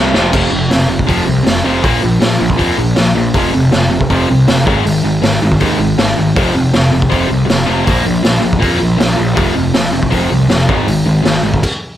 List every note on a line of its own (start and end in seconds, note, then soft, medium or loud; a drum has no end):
0.00 0.13 C2 medium
0.00 0.13 F2 medium
0.00 0.13 C3 loud
0.00 0.13 F3 loud
0.14 0.31 F1 medium
0.14 0.31 F2 medium
0.14 0.31 C3 medium
0.14 0.31 F3 loud
0.14 snare medium
0.32 0.48 F1 medium
0.32 0.49 F2 medium
0.32 0.50 C3 medium
0.32 0.50 F3 medium
0.32 kick loud
0.32 crash loud
0.51 0.67 F1 medium
0.51 0.68 F2 medium
0.51 0.69 C3 medium
0.70 1.00 F1 medium
0.70 0.87 F2 medium
0.70 0.87 C3 medium
0.70 snare loud
0.70 open hi-hat soft
0.88 1.05 F2 medium
0.88 1.05 C3 medium
0.99 kick medium
1.07 1.23 F1 medium
1.07 1.24 F2 medium
1.07 1.24 C3 medium
1.07 1.26 F3 medium
1.07 kick medium
1.07 open hi-hat soft
1.25 1.42 C2 medium
1.25 1.42 F2 medium
1.25 1.43 C3 medium
1.43 1.61 F1 medium
1.43 1.62 F2 medium
1.43 1.62 C3 medium
1.43 snare loud
1.43 open hi-hat soft
1.64 1.80 F1 medium
1.64 1.82 F2 medium
1.64 1.82 C3 medium
1.64 1.82 F3 medium
1.83 1.99 A#1 medium
1.83 2.01 A#2 medium
1.83 2.02 F3 medium
1.83 2.02 A#3 medium
1.83 kick loud
1.83 open hi-hat medium
2.02 2.18 A#1 medium
2.02 2.19 A#2 medium
2.02 2.20 F3 medium
2.21 2.36 A#1 medium
2.21 2.38 A#2 medium
2.21 2.38 F3 medium
2.21 snare loud
2.21 open hi-hat medium
2.39 2.56 A#1 medium
2.39 2.56 A#2 medium
2.39 2.56 F3 medium
2.50 kick medium
2.57 2.74 F2 medium
2.57 2.76 A#2 medium
2.57 2.76 F3 medium
2.57 2.76 A#3 medium
2.57 kick medium
2.57 open hi-hat medium
2.78 2.93 A#1 medium
2.78 2.95 A#2 medium
2.78 2.95 F3 medium
2.96 3.12 A#1 medium
2.96 3.13 A#2 medium
2.96 3.14 F3 medium
2.96 snare loud
2.96 open hi-hat soft
3.15 3.30 A#1 medium
3.15 3.32 A#2 medium
3.15 3.32 F3 medium
3.34 3.49 F1 medium
3.34 3.52 F2 medium
3.34 3.52 C3 medium
3.34 3.53 F3 loud
3.34 kick medium
3.34 open hi-hat medium
3.53 3.69 F1 medium
3.53 3.70 F2 medium
3.53 3.71 C3 medium
3.72 4.02 F1 medium
3.72 3.89 F2 medium
3.72 3.89 C3 medium
3.72 snare loud
3.72 open hi-hat soft
3.90 4.08 F2 medium
3.90 4.08 C3 medium
4.01 kick medium
4.10 4.25 F1 medium
4.10 4.27 F2 medium
4.10 4.28 C3 medium
4.10 4.28 F3 loud
4.10 kick medium
4.10 open hi-hat soft
4.29 4.45 C2 medium
4.29 4.46 F2 medium
4.29 4.46 C3 medium
4.48 4.67 F1 medium
4.48 4.65 F2 medium
4.48 4.65 C3 medium
4.48 snare loud
4.48 open hi-hat medium
4.66 4.82 G#1 medium
4.66 4.84 G#2 medium
4.66 4.84 D#3 medium
4.66 4.84 G#3 loud
4.66 kick loud
4.85 5.00 G#1 medium
4.85 5.02 G#2 medium
4.85 5.02 D#3 medium
4.85 open hi-hat soft
5.04 5.19 G#1 medium
5.04 5.21 G#2 medium
5.04 5.21 D#3 medium
5.22 5.37 G#1 medium
5.22 5.40 G#2 medium
5.22 5.40 D#3 medium
5.22 snare loud
5.22 open hi-hat medium
5.42 5.57 G#1 medium
5.42 5.59 G#2 medium
5.42 5.59 D#3 medium
5.52 kick medium
5.60 5.76 D#2 medium
5.60 5.78 G#2 medium
5.60 5.78 D#3 medium
5.60 5.79 G#3 medium
5.60 kick medium
5.60 open hi-hat medium
5.79 5.94 G#1 medium
5.79 5.96 G#2 medium
5.79 5.96 D#3 medium
5.98 6.14 G#1 medium
5.98 6.15 G#2 medium
5.98 6.16 D#3 medium
5.98 snare loud
5.98 open hi-hat medium
6.17 6.32 G#1 medium
6.17 6.34 G#2 medium
6.17 6.34 D#3 medium
6.36 6.51 F1 medium
6.36 6.53 F2 medium
6.36 6.54 C3 medium
6.36 6.54 F3 medium
6.36 kick loud
6.36 open hi-hat medium
6.55 6.70 F1 medium
6.55 6.72 F2 medium
6.55 6.72 C3 medium
6.73 7.03 F1 medium
6.73 6.91 F2 medium
6.73 6.91 C3 medium
6.73 snare loud
6.73 open hi-hat soft
6.92 7.08 F2 medium
6.92 7.08 C3 medium
7.02 kick medium
7.09 7.27 F1 medium
7.09 7.26 F2 medium
7.09 7.27 C3 medium
7.09 7.29 F3 loud
7.09 kick medium
7.09 open hi-hat medium
7.28 7.46 C2 medium
7.28 7.44 F2 medium
7.28 7.44 C3 medium
7.45 7.64 F2 medium
7.45 7.64 C3 medium
7.50 7.65 F1 medium
7.50 snare loud
7.50 open hi-hat medium
7.66 7.84 F1 medium
7.66 7.85 F2 medium
7.66 7.85 C3 medium
7.66 7.85 F3 loud
7.85 8.02 A#1 medium
7.85 8.02 A#2 medium
7.85 8.03 F3 medium
7.85 8.04 A#3 medium
7.85 kick loud
7.85 open hi-hat soft
8.03 8.21 A#1 medium
8.03 8.22 A#2 medium
8.03 8.22 F3 medium
8.23 8.40 A#1 medium
8.23 8.39 A#2 medium
8.23 8.40 F3 medium
8.23 snare loud
8.23 open hi-hat medium
8.40 8.58 A#2 medium
8.40 8.59 F3 medium
8.45 8.59 A#1 medium
8.53 kick medium
8.59 8.77 A#2 medium
8.59 8.78 F3 medium
8.59 8.79 A#3 medium
8.59 kick medium
8.59 open hi-hat medium
8.63 8.78 F2 medium
8.79 8.96 A#1 medium
8.79 8.96 A#2 medium
8.79 8.97 F3 medium
8.98 9.15 A#1 medium
8.98 9.15 A#2 medium
8.98 9.16 F3 medium
8.98 snare loud
8.98 open hi-hat medium
9.16 9.34 A#1 medium
9.16 9.34 A#2 medium
9.16 9.34 F3 medium
9.35 9.52 F1 medium
9.35 9.53 F2 loud
9.35 9.54 C3 medium
9.35 9.54 F3 medium
9.35 kick loud
9.35 open hi-hat medium
9.54 9.71 F1 medium
9.54 9.72 F2 medium
9.54 9.72 C3 medium
9.74 10.05 F1 medium
9.74 9.91 F2 medium
9.74 9.91 C3 medium
9.74 snare loud
9.74 open hi-hat medium
9.92 10.09 F2 medium
9.92 10.09 C3 medium
10.03 kick medium
10.10 10.27 F1 medium
10.10 10.29 F2 medium
10.10 10.30 C3 medium
10.10 10.30 F3 medium
10.10 kick loud
10.10 open hi-hat medium
10.31 10.46 C2 medium
10.31 10.48 F2 medium
10.31 10.49 C3 medium
10.50 10.65 F1 medium
10.50 10.67 F2 medium
10.50 10.67 C3 medium
10.50 snare loud
10.50 open hi-hat soft
10.68 10.84 G#1 medium
10.68 10.86 G#2 medium
10.68 10.86 D#3 medium
10.68 10.87 G#3 medium
10.68 kick loud
10.87 11.03 G#1 medium
10.87 11.05 G#2 medium
10.87 11.05 D#3 medium
10.87 open hi-hat medium
11.06 11.21 G#1 medium
11.06 11.21 G#2 medium
11.06 11.22 D#3 medium
11.23 11.40 G#1 medium
11.23 11.41 G#2 medium
11.23 11.42 D#3 medium
11.23 snare loud
11.23 open hi-hat medium
11.43 11.59 G#1 medium
11.43 11.61 G#2 medium
11.43 11.61 D#3 medium
11.54 kick medium
11.63 kick medium
11.63 crash medium